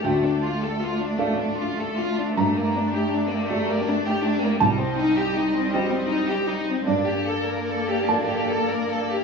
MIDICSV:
0, 0, Header, 1, 5, 480
1, 0, Start_track
1, 0, Key_signature, -2, "minor"
1, 0, Tempo, 776197
1, 22, Time_signature, 6, 3, 24, 8
1, 1461, Tempo, 750939
1, 4341, Tempo, 809717
1, 5745, End_track
2, 0, Start_track
2, 0, Title_t, "Felt piano"
2, 0, Program_c, 0, 0
2, 0, Control_c, 0, 64, 127
2, 26, Note_on_c, 0, 38, 52
2, 26, Note_on_c, 0, 79, 86
2, 33, Control_c, 0, 64, 0
2, 147, Control_c, 0, 64, 127
2, 708, Note_off_c, 0, 79, 0
2, 711, Note_off_c, 0, 38, 0
2, 731, Note_on_c, 0, 57, 41
2, 732, Note_on_c, 0, 77, 59
2, 734, Note_on_c, 0, 69, 40
2, 736, Note_on_c, 0, 74, 48
2, 1437, Note_off_c, 0, 57, 0
2, 1438, Note_off_c, 0, 77, 0
2, 1439, Note_off_c, 0, 69, 0
2, 1440, Note_off_c, 0, 74, 0
2, 1468, Note_on_c, 0, 82, 85
2, 1469, Note_on_c, 0, 43, 63
2, 1474, Control_c, 0, 64, 0
2, 1581, Control_c, 0, 64, 127
2, 2166, Note_off_c, 0, 43, 0
2, 2188, Note_on_c, 0, 57, 45
2, 2190, Note_on_c, 0, 67, 49
2, 2192, Note_on_c, 0, 74, 53
2, 2875, Note_off_c, 0, 57, 0
2, 2876, Note_off_c, 0, 67, 0
2, 2876, Note_off_c, 0, 82, 0
2, 2877, Note_off_c, 0, 74, 0
2, 2894, Note_on_c, 0, 81, 97
2, 2898, Note_on_c, 0, 36, 67
2, 2910, Control_c, 0, 64, 0
2, 3028, Control_c, 0, 64, 127
2, 3591, Note_off_c, 0, 81, 0
2, 3597, Note_off_c, 0, 36, 0
2, 3617, Note_on_c, 0, 60, 55
2, 3619, Note_on_c, 0, 79, 85
2, 3621, Note_on_c, 0, 67, 53
2, 3621, Note_on_c, 0, 75, 58
2, 3842, Note_off_c, 0, 79, 0
2, 4316, Note_off_c, 0, 60, 0
2, 4318, Note_off_c, 0, 67, 0
2, 4318, Note_off_c, 0, 75, 0
2, 4341, Note_on_c, 0, 43, 68
2, 4342, Note_on_c, 0, 74, 85
2, 4353, Control_c, 0, 64, 0
2, 4462, Control_c, 0, 64, 127
2, 5038, Note_off_c, 0, 74, 0
2, 5039, Note_off_c, 0, 43, 0
2, 5062, Note_on_c, 0, 81, 84
2, 5063, Note_on_c, 0, 58, 46
2, 5065, Note_on_c, 0, 69, 41
2, 5069, Note_on_c, 0, 74, 52
2, 5745, Note_off_c, 0, 58, 0
2, 5745, Note_off_c, 0, 69, 0
2, 5745, Note_off_c, 0, 74, 0
2, 5745, Note_off_c, 0, 81, 0
2, 5745, End_track
3, 0, Start_track
3, 0, Title_t, "String section"
3, 0, Program_c, 1, 48
3, 0, Note_on_c, 1, 69, 43
3, 0, Note_on_c, 1, 74, 39
3, 14, Note_on_c, 1, 57, 49
3, 1457, Note_off_c, 1, 74, 0
3, 1462, Note_off_c, 1, 69, 0
3, 1465, Note_on_c, 1, 74, 58
3, 1469, Note_on_c, 1, 67, 56
3, 2875, Note_off_c, 1, 74, 0
3, 2895, Note_off_c, 1, 57, 0
3, 2899, Note_on_c, 1, 75, 65
3, 2902, Note_on_c, 1, 60, 63
3, 4343, Note_off_c, 1, 75, 0
3, 4344, Note_off_c, 1, 60, 0
3, 4345, Note_on_c, 1, 58, 63
3, 4346, Note_off_c, 1, 67, 0
3, 4346, Note_on_c, 1, 74, 65
3, 4347, Note_on_c, 1, 69, 60
3, 5745, Note_off_c, 1, 58, 0
3, 5745, Note_off_c, 1, 69, 0
3, 5745, Note_off_c, 1, 74, 0
3, 5745, End_track
4, 0, Start_track
4, 0, Title_t, "Violin section"
4, 0, Program_c, 2, 48
4, 29, Note_on_c, 2, 57, 48
4, 139, Note_off_c, 2, 57, 0
4, 152, Note_on_c, 2, 62, 47
4, 267, Note_off_c, 2, 62, 0
4, 274, Note_on_c, 2, 65, 49
4, 386, Note_off_c, 2, 65, 0
4, 389, Note_on_c, 2, 69, 48
4, 501, Note_off_c, 2, 69, 0
4, 503, Note_on_c, 2, 65, 47
4, 612, Note_on_c, 2, 62, 52
4, 617, Note_off_c, 2, 65, 0
4, 727, Note_on_c, 2, 57, 52
4, 730, Note_off_c, 2, 62, 0
4, 847, Note_off_c, 2, 57, 0
4, 852, Note_on_c, 2, 62, 54
4, 966, Note_on_c, 2, 65, 50
4, 971, Note_off_c, 2, 62, 0
4, 1090, Note_off_c, 2, 65, 0
4, 1092, Note_on_c, 2, 69, 52
4, 1216, Note_off_c, 2, 69, 0
4, 1218, Note_on_c, 2, 65, 59
4, 1341, Note_off_c, 2, 65, 0
4, 1349, Note_on_c, 2, 62, 51
4, 1463, Note_on_c, 2, 57, 52
4, 1466, Note_off_c, 2, 62, 0
4, 1578, Note_off_c, 2, 57, 0
4, 1587, Note_on_c, 2, 58, 56
4, 1708, Note_off_c, 2, 58, 0
4, 1711, Note_on_c, 2, 62, 61
4, 1829, Note_on_c, 2, 67, 54
4, 1830, Note_off_c, 2, 62, 0
4, 1942, Note_on_c, 2, 62, 56
4, 1948, Note_off_c, 2, 67, 0
4, 2062, Note_on_c, 2, 58, 56
4, 2063, Note_off_c, 2, 62, 0
4, 2180, Note_on_c, 2, 57, 61
4, 2182, Note_off_c, 2, 58, 0
4, 2297, Note_on_c, 2, 58, 63
4, 2300, Note_off_c, 2, 57, 0
4, 2418, Note_off_c, 2, 58, 0
4, 2418, Note_on_c, 2, 62, 64
4, 2538, Note_off_c, 2, 62, 0
4, 2538, Note_on_c, 2, 67, 62
4, 2657, Note_on_c, 2, 62, 68
4, 2658, Note_off_c, 2, 67, 0
4, 2774, Note_on_c, 2, 58, 60
4, 2778, Note_off_c, 2, 62, 0
4, 2889, Note_on_c, 2, 55, 59
4, 2897, Note_off_c, 2, 58, 0
4, 3005, Note_off_c, 2, 55, 0
4, 3016, Note_on_c, 2, 60, 59
4, 3135, Note_on_c, 2, 63, 66
4, 3138, Note_off_c, 2, 60, 0
4, 3253, Note_on_c, 2, 67, 62
4, 3257, Note_off_c, 2, 63, 0
4, 3370, Note_on_c, 2, 63, 59
4, 3377, Note_off_c, 2, 67, 0
4, 3484, Note_on_c, 2, 60, 58
4, 3495, Note_off_c, 2, 63, 0
4, 3601, Note_on_c, 2, 55, 67
4, 3612, Note_off_c, 2, 60, 0
4, 3724, Note_on_c, 2, 60, 64
4, 3730, Note_off_c, 2, 55, 0
4, 3840, Note_on_c, 2, 63, 67
4, 3852, Note_off_c, 2, 60, 0
4, 3969, Note_on_c, 2, 67, 60
4, 3970, Note_off_c, 2, 63, 0
4, 4091, Note_on_c, 2, 63, 62
4, 4094, Note_off_c, 2, 67, 0
4, 4216, Note_off_c, 2, 63, 0
4, 4221, Note_on_c, 2, 60, 59
4, 4339, Note_on_c, 2, 62, 57
4, 4343, Note_off_c, 2, 60, 0
4, 4448, Note_off_c, 2, 62, 0
4, 4453, Note_on_c, 2, 67, 57
4, 4574, Note_off_c, 2, 67, 0
4, 4577, Note_on_c, 2, 69, 61
4, 4694, Note_on_c, 2, 70, 53
4, 4697, Note_off_c, 2, 69, 0
4, 4817, Note_off_c, 2, 70, 0
4, 4823, Note_on_c, 2, 69, 55
4, 4943, Note_off_c, 2, 69, 0
4, 4945, Note_on_c, 2, 67, 52
4, 5056, Note_on_c, 2, 62, 57
4, 5064, Note_off_c, 2, 67, 0
4, 5175, Note_on_c, 2, 67, 54
4, 5179, Note_off_c, 2, 62, 0
4, 5296, Note_on_c, 2, 69, 59
4, 5298, Note_off_c, 2, 67, 0
4, 5417, Note_on_c, 2, 70, 56
4, 5419, Note_off_c, 2, 69, 0
4, 5537, Note_on_c, 2, 69, 50
4, 5540, Note_off_c, 2, 70, 0
4, 5660, Note_off_c, 2, 69, 0
4, 5660, Note_on_c, 2, 67, 43
4, 5745, Note_off_c, 2, 67, 0
4, 5745, End_track
5, 0, Start_track
5, 0, Title_t, "Cello"
5, 0, Program_c, 3, 42
5, 23, Note_on_c, 3, 57, 57
5, 2901, Note_on_c, 3, 55, 75
5, 2911, Note_off_c, 3, 57, 0
5, 4338, Note_off_c, 3, 55, 0
5, 4342, Note_on_c, 3, 58, 71
5, 5745, Note_off_c, 3, 58, 0
5, 5745, End_track
0, 0, End_of_file